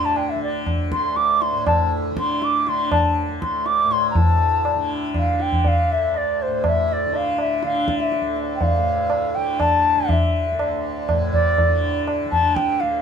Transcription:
Already playing: D2 A2 D3
0.05 A5
0.16 G5, tabla na
0.30 E5
0.35 D3
0.44 D5
0.66 tabla na, tabla ge
0.92 D2 C6, tabla ke
1.16 D6, tabla te
1.41 C6, tabla te
1.52 A2
1.67 A5, tabla na, tabla ge
2.11 D3
2.17 C6, tabla ke
2.42 D6, tabla te
2.67 D3 C6, tabla te
2.92 A5, tabla na, tabla ge
3.28 D2
3.41 C6, tabla ke
3.66 D6, tabla te
3.84 A2
3.91 C6, tabla te
4.11 A#5
4.15 A2 A5, tabla tin, tabla ge
4.65 tabla na
4.75 D3
5.14 F5, tabla na, tabla ge
5.32 D3
5.40 G5, tabla te
5.53 tabla ge
5.65 F5, tabla tin, tabla ge
5.91 D2 E5
6.14 D5, tabla na
6.42 C5
6.47 A2
6.64 E5, tabla na, tabla ge
6.88 tabla te
6.93 D5
7.06 D3
7.13 F5, tabla tin
7.38 E5, tabla na
7.63 D3 F5, tabla te
7.75 tabla te
7.88 E5, tabla ke
8.00 tabla te
8.12 tabla te
8.21 D2
8.36 tabla te
8.56 G5
8.61 F5, tabla tin, tabla ge
8.78 A2
9.10 tabla na
9.35 D3 G5
9.60 A5, tabla na, tabla ge
9.95 D3
10.09 E5, tabla tin, tabla ge
10.51 D2
10.59 tabla na
11.09 A2, tabla na, tabla ge
11.33 D5, tabla ge
11.58 tabla tin, tabla ge
11.68 D3
12.07 tabla na
12.25 D3
12.31 A5, tabla tin, tabla ge
12.55 G5, tabla ke
12.80 D2 F5, tabla te

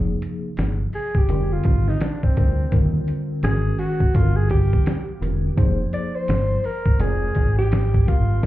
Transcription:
Already playing: F1 C3 F3 A#3 D#4 G#4
0.22 closed hi-hat
0.57 G1, snare, closed hi-hat
0.93 G#4, open hi-hat
1.15 G4, kick
1.28 F1 D3 G3 C4 F4 A#4, closed hi-hat
1.53 F4
1.64 G#1, kick, closed hi-hat
1.88 D#4, snare
2.00 D4, snare, closed hi-hat
2.23 C4, kick
2.35 D2 D3 G3 C4 F4 A#4, kick, closed hi-hat
2.71 D#2 D3 G3 C4 F4 A#4, kick, closed hi-hat
3.08 closed hi-hat
3.42 G#1 D#3 G#3 C#4 F#4 G#4, snare, closed hi-hat
3.51 A#4
3.79 F#4, open hi-hat
4.00 kick
4.13 G1 D3 G3 C4 F4 A4, kick, closed hi-hat
4.22 A#4
4.36 G#4
4.50 G4, kick, closed hi-hat
4.73 kick
4.86 snare, closed hi-hat
5.20 E1 D3 G3 C4 F4 A#4, closed hi-hat
5.56 F1 F3 A#3 D#4 G#4 C5, kick, closed hi-hat
5.93 D5, closed hi-hat
6.15 C5
6.28 G1, snare, closed hi-hat
6.64 A#4, open hi-hat
6.86 kick
6.98 F1 G#3 C4 F4 G#4 A#4 D5, closed hi-hat
7.35 G#1, kick, closed hi-hat
7.58 G4, snare
7.72 snare, closed hi-hat
7.94 kick
8.06 G3 C4 F4 A#4 F5, kick, closed hi-hat
8.42 D#2 G3 C4 F4 A#4, kick, closed hi-hat

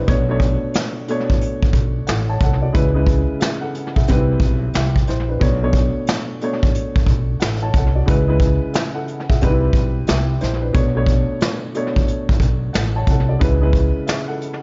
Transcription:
Already playing: C4 G#4 B4 C5 E5
0.07 B1 B2 A3 D4 C#5, kick, closed hi-hat
0.29 B2 A3 D4 C#5
0.40 kick, closed hi-hat
0.74 snare, closed hi-hat
1.08 B2 A3 D4 C#5, closed hi-hat
1.30 A1, kick
1.41 closed hi-hat
1.63 kick
1.73 B1, kick, closed hi-hat
2.07 A1 A4 F#5, snare, closed hi-hat
2.29 C#5 A5
2.41 C2 A4 F#5, kick, closed hi-hat
2.62 F#4 D5
2.73 C#2 C#3 G#3 E4 B4, kick, closed hi-hat
2.94 C#3 G#3 E4 B4
3.07 kick, closed hi-hat
3.40 G#4 E5, snare, closed hi-hat
3.61 A4 F#5
3.75 closed hi-hat
3.96 B1 G#4 E5, kick
4.08 C2 G3 C4 D#4 B4, kick, closed hi-hat
4.16 E4
4.40 B1, kick, closed hi-hat
4.73 C2 G4 E5, snare, closed hi-hat
4.96 kick
5.07 A#1 E4 C5, snare, closed hi-hat
5.29 D4 B4
5.40 B1 B2 A3 D4 C#5, kick, closed hi-hat
5.61 B2 A3 D4 C#5
5.73 kick, closed hi-hat
6.07 snare, closed hi-hat
6.41 B2 A3 D4 C#5, closed hi-hat
6.63 A1, kick
6.74 closed hi-hat
6.96 kick
7.06 B1, kick, closed hi-hat
7.40 A1 A4 F#5, snare, closed hi-hat
7.63 C#5 A5
7.74 C2 A4 F#5, kick, closed hi-hat
7.95 F#4 D5
8.06 C#2 C#3 G#3 E4 B4, kick, closed hi-hat
8.27 C#3 G#3 E4 B4
8.40 kick, closed hi-hat
8.73 G#4 E5, snare, closed hi-hat
8.94 A4 F#5
9.08 closed hi-hat
9.29 B1 G#4 E5, kick
9.41 C2 G3 C4 D#4 B4, kick, closed hi-hat
9.50 E4
9.73 B1, kick, closed hi-hat
10.07 C2 G4 E5, snare, closed hi-hat
10.40 A#1 E4 C5, snare, closed hi-hat
10.62 D4 B4
10.73 B1 B2 A3 D4 C#5, kick, closed hi-hat
10.95 B2 A3 D4 C#5
11.06 kick, closed hi-hat
11.40 snare, closed hi-hat
11.75 B2 A3 D4 C#5, closed hi-hat
11.96 A1, kick
12.08 closed hi-hat
12.29 kick
12.40 B1, kick, closed hi-hat
12.73 A1 A4 F#5, snare, closed hi-hat
12.96 C#5 A5
13.07 C2 A4 F#5, kick, closed hi-hat
13.29 F#4 D5
13.39 C#2 C#3 G#3 E4 B4, kick, closed hi-hat
13.61 C#3 G#3 E4 B4
13.73 kick, closed hi-hat
14.07 G#4 E5, snare, closed hi-hat
14.28 A4 F#5
14.41 closed hi-hat

